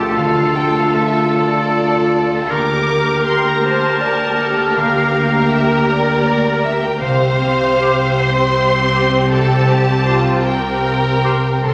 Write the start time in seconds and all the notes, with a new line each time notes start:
Already playing: D2 D3 F3 A3 F4 G4 A4 D5 A5
0.17 D3 A4 F5
0.55 D4 G5
0.77 F5
0.93 E5
1.33 D5 F5
2.48 D2 D3 A#3 G4 A#4 D6
2.88 A#3
3.25 G4 C6
3.46 A#5
3.63 C5 A5
4.01 A#4 D5
4.39 A#3 A4
4.75 D3 A#4 F5
5.14 D4
5.51 G4 E5
5.89 A#4 D5
6.26 D5
6.63 A#3 E5
6.81 G5
7.00 C2 C3 C4 G4 C5 F5
7.40 C4
7.79 G4 C5
8.18 C5 C6
8.58 F5
8.93 C4 G4 C5
9.31 C3 A4 A5
9.68 G3 G4
10.06 F4 G4 C5
10.44 A#4 C5 G5
10.85 F5
11.24 C4 G4 C5
11.64 C2 C3 C4 A4 C6